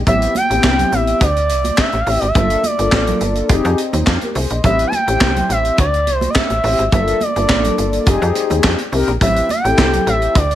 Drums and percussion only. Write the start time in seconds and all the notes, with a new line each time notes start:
0.07 kick, closed hi-hat, low conga
0.22 closed hi-hat
0.35 closed hi-hat, muted conga, high conga
0.51 closed hi-hat
0.64 kick, snare, clap, high conga
0.79 closed hi-hat, low conga
0.92 closed hi-hat, muted conga
1.07 closed hi-hat
1.21 kick, closed hi-hat
1.37 closed hi-hat
1.50 closed hi-hat
1.64 closed hi-hat, high conga
1.78 kick, snare, clap, muted conga
1.93 closed hi-hat
2.07 open hi-hat
2.22 closed hi-hat
2.35 kick, closed hi-hat, low conga
2.50 closed hi-hat
2.63 closed hi-hat, high conga
2.79 closed hi-hat
2.92 kick, snare, clap, high conga
3.07 closed hi-hat, low conga
3.21 closed hi-hat
3.36 closed hi-hat
3.49 kick, closed hi-hat
3.65 closed hi-hat
3.78 closed hi-hat
3.93 closed hi-hat, high conga
4.07 kick, snare, clap
4.21 closed hi-hat, high conga
4.35 open hi-hat, muted conga
4.50 closed hi-hat
4.64 kick, closed hi-hat, muted conga, low conga
4.79 closed hi-hat
4.92 closed hi-hat, high conga
5.08 closed hi-hat
5.21 kick, snare, clap, high conga
5.36 closed hi-hat, low conga
5.50 closed hi-hat
5.65 closed hi-hat
5.78 kick, closed hi-hat, muted conga
5.94 closed hi-hat
6.07 closed hi-hat, muted conga
6.21 closed hi-hat, high conga
6.35 kick, snare, clap
6.50 closed hi-hat
6.64 open hi-hat, muted conga
6.79 closed hi-hat
6.92 kick, closed hi-hat, low conga
7.08 closed hi-hat
7.21 closed hi-hat, high conga
7.36 closed hi-hat
7.49 kick, snare, clap, high conga
7.65 closed hi-hat, low conga
7.78 closed hi-hat
7.93 closed hi-hat
8.06 kick, closed hi-hat, muted conga
8.22 closed hi-hat
8.35 closed hi-hat, muted conga
8.50 closed hi-hat, high conga
8.64 kick, snare, clap
8.79 closed hi-hat
8.93 open hi-hat, muted conga
9.08 closed hi-hat
9.21 kick, closed hi-hat, low conga
9.37 closed hi-hat
9.49 closed hi-hat, muted conga, high conga
9.65 closed hi-hat
9.78 kick, snare, clap, muted conga, high conga
9.93 closed hi-hat, low conga
10.07 closed hi-hat
10.22 closed hi-hat
10.35 kick, closed hi-hat, muted conga
10.51 closed hi-hat